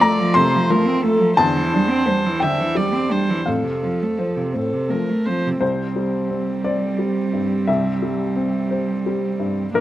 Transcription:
Already playing: upright piano F2 F3 C6, viola D5
0.00 upright piano A3 A#5, cello A3
0.20 cello F3
0.34 cello C3, upright piano A3 C6, viola C5
0.55 cello F3
0.70 upright piano F3, cello A3, viola A#4
0.87 cello C4
1.04 upright piano A3, cello A3, viola A4
1.21 cello F3
1.37 upright piano E2 A5, cello D3, viola C5
1.57 cello E3
1.72 cello G3, upright piano D4
1.90 cello C4
2.06 cello G3, upright piano C5
2.26 cello E3
2.40 cello D3, upright piano D4 G5, viola E5
2.60 cello E3
2.75 upright piano G3, cello G3, viola D5
2.94 cello C4
3.10 cello G3, upright piano D4, viola C5
3.30 cello E3
3.46 upright piano F2 F5, cello A2, viola A4
3.64 cello C3
3.82 cello F3, upright piano C4
4.02 cello A3
4.19 cello F3, upright piano C5
4.37 cello C3
4.53 cello A2, upright piano C4, viola A4
4.74 cello C3
4.89 cello F3, upright piano A3, viola A#4
5.10 cello A3
5.26 cello F3, upright piano C4, viola C5
5.47 cello C3
5.61 upright piano C2 C5, cello G3, viola C4
5.96 upright piano G3
6.30 upright piano C4
6.64 upright piano C5 D5
6.99 upright piano G3
7.33 upright piano G2
7.67 upright piano C2 E5
8.02 upright piano G3
8.36 upright piano C4
8.71 upright piano C5
9.06 upright piano G3
9.40 upright piano G2
9.74 upright piano A#1 A#4, cello A#3, viola D4

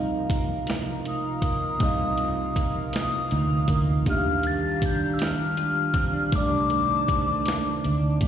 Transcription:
Already playing: fingered electric bass C2, tine electric piano C3 A#3 D#4 D#5 F5, clean electric guitar C3 F3 D#4, analog synth pad F4 A#4 F5 A#5
0.30 clean electric guitar A#3, kick, closed hi-hat
0.67 clean electric guitar F3, snare, closed hi-hat
1.05 clean electric guitar D#4, soft synth lead D#6, closed hi-hat
1.42 clean electric guitar A#3, kick, closed hi-hat
1.77 tine electric piano C3 A#3, kick, closed hi-hat
1.81 fingered electric bass C2, clean electric guitar C3 D#4, tine electric piano D#4 D#5
1.85 tine electric piano F5
2.17 clean electric guitar F3, closed hi-hat
2.56 clean electric guitar A#3, kick, closed hi-hat
2.93 clean electric guitar F3, soft synth lead D#6, snare, closed hi-hat
3.31 fingered electric bass D2, clean electric guitar D#4, closed hi-hat
3.68 fingered electric bass D2, clean electric guitar A#3, kick, closed hi-hat
4.03 tine electric piano D#3 D4, clean electric guitar D#3, analog synth pad D4 G4, kick, closed hi-hat
4.07 fingered electric bass D#2, clean electric guitar F4, tine electric piano G4, soft synth lead F6
4.11 tine electric piano E5
4.18 tine electric piano F5
4.43 clean electric guitar G3, soft synth lead A6, closed hi-hat
4.82 clean electric guitar D4, soft synth lead G6, kick, closed hi-hat
5.14 soft synth lead E6
5.19 clean electric guitar G3, snare, closed hi-hat
5.23 soft synth lead F6
5.57 clean electric guitar F4, closed hi-hat
5.94 clean electric guitar C4, kick, closed hi-hat
6.13 clean electric guitar D4
6.30 fingered electric bass C2, tine electric piano C3 A3, clean electric guitar C3 D4, analog synth pad C5 A5, kick, closed hi-hat
6.35 tine electric piano D4 D5, soft synth lead D6
6.42 tine electric piano D4
6.70 clean electric guitar D#3, closed hi-hat
7.08 clean electric guitar G3, kick, closed hi-hat
7.28 clean electric guitar A3
7.46 clean electric guitar D#3, snare, closed hi-hat
7.84 fingered electric bass D2, clean electric guitar D4, closed hi-hat
8.21 fingered electric bass A#1, clean electric guitar A3, kick, closed hi-hat

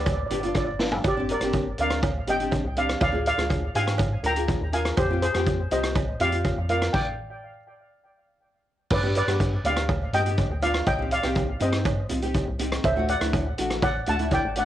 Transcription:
Already playing: analog synth bass D2, nylon-string guitar B3 D4 G4
0.04 steel pan D5, kick, closed hi-hat, cowbell
0.12 steel pan D5
0.20 steel pan D5
0.27 nylon-string guitar B3, steel pan D5, closed hi-hat
0.31 analog synth bass G1, nylon-string guitar D4 G4, steel pan D5
0.41 nylon-string guitar B3 D4 F4, steel pan D5, closed hi-hat
0.49 steel pan D5
0.55 steel pan D5, kick, cross-stick, closed hi-hat, cowbell
0.65 analog synth bass G1, steel pan D5
0.79 nylon-string guitar B3 D4 F4, snare
0.92 floor tom
1.04 analog synth bass G1, steel pan G4, kick, closed hi-hat, cowbell
1.08 steel pan D5
1.16 nylon-string guitar C4 D4 G4
1.29 steel pan A#4 D5, closed hi-hat
1.41 analog synth bass G1, nylon-string guitar C4 D4 G4, cross-stick, closed hi-hat
1.53 kick, closed hi-hat, cowbell
1.78 analog synth bass D2, nylon-string guitar C4 D4 A#4, steel pan D5 F5, closed hi-hat
1.90 cross-stick, closed hi-hat
2.03 kick, closed hi-hat, cowbell
2.27 analog synth bass G1, nylon-string guitar C4 D4 G4, steel pan D#5 G5, closed hi-hat
2.39 nylon-string guitar C4 D4 G4, closed hi-hat
2.51 kick, closed hi-hat, cowbell
2.64 analog synth bass C2
2.76 nylon-string guitar C4 D4 G4, steel pan D5 F5, closed hi-hat
2.89 cross-stick, closed hi-hat
3.01 analog synth bass D2, steel pan D5 F5, kick, closed hi-hat, cowbell
3.12 nylon-string guitar D4 F4 G#4
3.26 steel pan D5 F5, closed hi-hat
3.37 analog synth bass D2, nylon-string guitar D4 F4 G#4, cross-stick, closed hi-hat
3.50 kick, closed hi-hat, cowbell
3.75 analog synth bass G#2, nylon-string guitar D4 F4 G4, steel pan F5 G#5, closed hi-hat
3.87 cross-stick, closed hi-hat
3.98 kick, closed hi-hat, cowbell
4.23 analog synth bass D2, nylon-string guitar D4 F4 A#4, steel pan G5 A#5, closed hi-hat
4.36 nylon-string guitar D4 F4 G#4, closed hi-hat
4.48 kick, closed hi-hat, cowbell
4.61 analog synth bass D#2
4.72 nylon-string guitar D4 F4 A#4, steel pan F5 G#5, closed hi-hat
4.85 cross-stick, closed hi-hat
4.97 analog synth bass F2, steel pan G4 C5, kick, closed hi-hat, cowbell
5.10 nylon-string guitar C4 F4 G4
5.22 steel pan G#4 C5, closed hi-hat
5.34 analog synth bass F2, nylon-string guitar C4 F4 G4, cross-stick, closed hi-hat
5.46 kick, closed hi-hat, cowbell
5.71 analog synth bass C2, nylon-string guitar C4 F4 G4, steel pan C5 D#5, closed hi-hat
5.83 cross-stick, closed hi-hat
5.95 kick, closed hi-hat, cowbell
6.20 analog synth bass F2, nylon-string guitar C4 F4 G4, steel pan D5 F5, closed hi-hat
6.32 nylon-string guitar C4 F4 G4, closed hi-hat
6.44 kick, closed hi-hat, cowbell
6.57 analog synth bass F2
6.69 nylon-string guitar C4 F4 A#4, steel pan D5 F5, closed hi-hat
6.82 cross-stick, closed hi-hat
6.93 steel pan D5 G5, kick, crash
8.90 analog synth bass G2, steel pan B4 D5, kick, crash, cowbell
9.03 nylon-string guitar B3 D4 G4
9.15 steel pan B4 D5, closed hi-hat
9.27 analog synth bass G2, nylon-string guitar B3 D4 G4, cross-stick, closed hi-hat
9.40 kick, closed hi-hat, cowbell
9.64 analog synth bass D2, nylon-string guitar B3 D4 G4, steel pan D5 F5, closed hi-hat
9.76 cross-stick, closed hi-hat
9.89 kick, closed hi-hat, cowbell
10.13 analog synth bass G2, nylon-string guitar B3 D4 G4, steel pan D#5 G5, closed hi-hat
10.26 nylon-string guitar B3 D4 G4, closed hi-hat
10.37 kick, closed hi-hat, cowbell
10.50 analog synth bass D2
10.62 nylon-string guitar B3 D4 F4, steel pan D5 F5, closed hi-hat
10.74 cross-stick, closed hi-hat
10.86 analog synth bass C2, steel pan D#5 G5, kick, closed hi-hat, cowbell
10.99 nylon-string guitar C4 D#4 G4
11.11 steel pan D5 F5, closed hi-hat
11.23 analog synth bass C2, nylon-string guitar C4 D#4 G4, cross-stick, closed hi-hat
11.35 kick, closed hi-hat, cowbell
11.60 analog synth bass G2, nylon-string guitar C4 D#4 G4, steel pan C5 D#5, closed hi-hat
11.72 cross-stick, closed hi-hat
11.85 kick, closed hi-hat, cowbell
12.09 analog synth bass C2, nylon-string guitar C4 D#4 F4, closed hi-hat
12.22 nylon-string guitar C4 D#4 G4, closed hi-hat
12.34 kick, closed hi-hat, cowbell
12.47 analog synth bass C2
12.59 nylon-string guitar C4 D#4 G4, closed hi-hat
12.72 cross-stick, closed hi-hat
12.84 analog synth bass D2, steel pan C5 E5, kick, closed hi-hat, cowbell
12.96 nylon-string guitar A3 D4 F#4
13.08 steel pan D5 F#5, closed hi-hat
13.21 analog synth bass D2, nylon-string guitar A3 D4 E4, cross-stick, closed hi-hat
13.33 kick, closed hi-hat, cowbell
13.58 analog synth bass A1, nylon-string guitar A3 D4 F#4, closed hi-hat
13.70 cross-stick, closed hi-hat
13.82 steel pan D5 F#5, kick, closed hi-hat, cowbell
14.06 analog synth bass D2, nylon-string guitar A3 D4 F#4, steel pan F#5 A5, closed hi-hat
14.19 nylon-string guitar A3 D4 E4, closed hi-hat
14.31 steel pan D5 G5, kick, closed hi-hat, cowbell
14.44 analog synth bass G#1
14.56 nylon-string guitar A3 D4 F#4, steel pan D5 F#5, closed hi-hat

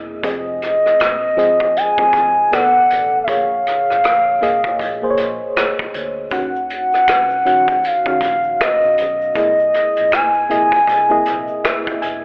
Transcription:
Already playing: fingered electric bass E1, fm electric piano C3 A#3 E4 G#4 D#5
0.23 fingered electric bass F1, fm electric piano F3 C4 G#4 D#5, soft synth lead D#5, kick, closed hi-hat
0.62 cross-stick, closed hi-hat
0.86 cross-stick
1.00 fingered electric bass A#1, cross-stick, closed hi-hat
1.37 fingered electric bass G#1, fm electric piano F3 C4 G#4 D#5, closed hi-hat
1.60 kick
1.77 soft synth lead G#5, closed hi-hat
1.98 fm electric piano F3 C4 G#4 D#5, kick
2.13 fingered electric bass G#1, kick, cross-stick, closed hi-hat
2.51 fingered electric bass B1, fm electric piano B2 B3 A4 D5, soft synth lead F#5, cross-stick, closed hi-hat
2.77 fingered electric bass A1
2.90 fingered electric bass A1, closed hi-hat
3.24 fm electric piano A#2 A#3, soft synth lead E5, kick
3.28 fingered electric bass A#1, fm electric piano G#4 C#5, soft synth lead F5, closed hi-hat
3.67 cross-stick, closed hi-hat
3.90 fingered electric bass G#1, cross-stick
4.04 fingered electric bass A#1, cross-stick, closed hi-hat
4.41 fingered electric bass C2, fm electric piano A#2 A#3 G#4 D#5, closed hi-hat
4.64 kick
4.79 fingered electric bass A#1, kick, closed hi-hat
5.02 fm electric piano A#2 A#3 G#4 C5
5.10 fm electric piano C#5
5.17 fingered electric bass A#1, cross-stick, closed hi-hat
5.56 cross-stick, closed hi-hat
5.79 kick
5.94 fingered electric bass D2, closed hi-hat
6.30 fingered electric bass D#2, fm electric piano D#3 C#4 F#4 F#5, soft synth lead F#5, kick, closed hi-hat, shaker
6.56 shaker
6.70 closed hi-hat, shaker
6.92 cross-stick, shaker
7.08 fingered electric bass C2, finger snap, cross-stick, closed hi-hat, shaker
7.30 shaker
7.45 fingered electric bass A#1, fm electric piano D#3 C#4 F#4 F#5, closed hi-hat
7.68 kick, closed hi-hat, shaker
7.84 soft synth lead F5, closed hi-hat, shaker
8.06 fm electric piano D#3 C#4 F#4 F5, kick, shaker
8.21 fingered electric bass A#1, kick, cross-stick, closed hi-hat, shaker
8.43 shaker
8.61 soft synth lead D#5, finger snap, cross-stick, closed hi-hat, shaker
8.83 fingered electric bass C#2, shaker
8.98 fingered electric bass B1, closed hi-hat, shaker
9.21 shaker
9.35 fingered electric bass C2, fm electric piano C3 A#3 E4 G#4 D#5, soft synth lead D#5, kick, closed hi-hat, shaker
9.60 shaker
9.74 cross-stick, closed hi-hat, shaker
9.96 fingered electric bass A#1, closed hi-hat, shaker
10.12 fingered electric bass G#1, soft synth lead G#5, finger snap, cross-stick, closed hi-hat, shaker
10.34 shaker
10.49 fingered electric bass A#1, fm electric piano C3 A#3 E4 G#4 D#5, closed hi-hat
10.72 kick, closed hi-hat, shaker
10.87 fingered electric bass C2, kick, closed hi-hat, shaker
11.10 fm electric piano C3 A#3 E4 G#4 D#5, shaker
11.26 fingered electric bass A#1, cross-stick, closed hi-hat, shaker
11.48 shaker
11.64 fm electric piano E5, finger snap, cross-stick, closed hi-hat, shaker
11.87 kick, shaker
12.02 fingered electric bass E1, fm electric piano G#5, closed hi-hat, shaker

